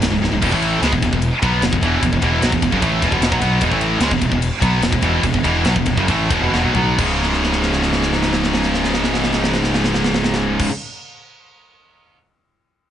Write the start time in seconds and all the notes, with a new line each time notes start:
0.02 C#1 C#2 G#2, snare, ride
0.11 C#1 C#2 G#2
0.22 C#1 C#2 G#2, snare
0.32 C#1 C#2 G#2
0.42 E1 E2 B2, kick, crash
0.52 A1 A2 E3 A3, kick
0.62 ride
0.82 C#2 C#3 G#3, snare, ride
0.93 E1 E2 B2, kick
1.02 E1 E2 B2, kick, ride
1.13 E1 E2 B2, kick
1.22 ride
1.42 B1 B2 F#3 B3, kick, ride
1.62 E1 E2 B2, snare, ride
1.73 E1 E2 B2, kick
1.82 E1 E2 B2 E3, kick, ride
2.02 E1 E2 B2, kick, ride
2.13 E1 E2 B2, kick
2.22 E1 E2 B2 E3, kick, ride
2.41 B1 B2 F#3, snare, ride
2.52 E1 E2 B2, kick
2.62 E1 E2 B2, kick, ride
2.71 F#1 F#2 C#3, kick
2.82 A1 A2 E3 A3, kick, ride
3.02 E1 E2 B2, kick, ride
3.12 E1 E2 B2, kick
3.19 E1 E2 B2, snare, ride
3.31 B1 B2 F#3, kick
3.41 B1 B2 F#3 B3, kick, ride
3.60 E1 E2 B2, kick, ride
3.70 A1 A2 E3 A3, kick
3.81 ride
4.00 C#2 C#3 G#3, snare, ride
4.11 E1 E2 B2, kick
4.21 E1 E2 B2, kick, ride
4.31 E1 E2 B2, kick
4.42 ride
4.61 B1 B2 F#3 B3, kick, ride
4.81 E1 E2 B2, snare, ride
4.92 E1 E2 B2, kick
5.02 E1 E2 B2 E3, kick, ride
5.23 E1 E2 B2, kick, ride
5.34 E1 E2 B2, kick
5.44 E1 E2 B2 E3, kick, ride
5.65 B1 B2 F#3, snare, ride
5.75 E1 E2 B2, kick
5.86 E1 E2 B2, kick, ride
5.97 F#1 F#2 C#3, kick
6.08 A1 A2 E3 A3, kick, ride
6.30 E1 E2 B2, kick, ride
6.41 E1 E2 B2
6.51 E1 E2 B2, snare
6.63 B1 B2 F#3
6.74 B1 B2 F#3 B3, floor tom
6.96 C#1 C#2 G#2 C#3, kick, crash
7.23 snare
7.33 snare
7.44 snare
7.53 snare
7.63 snare
7.73 snare
7.83 snare
7.93 snare
8.03 snare
8.13 snare
8.23 snare
8.33 snare
8.44 snare
8.54 snare
8.63 snare
8.74 snare
8.84 snare
8.94 snare
9.04 snare
9.14 snare
9.24 snare
9.33 snare
9.44 snare
9.54 snare
9.64 snare
9.74 snare
9.84 snare
9.94 snare
10.04 snare
10.14 snare
10.24 snare
10.34 snare
10.59 kick, crash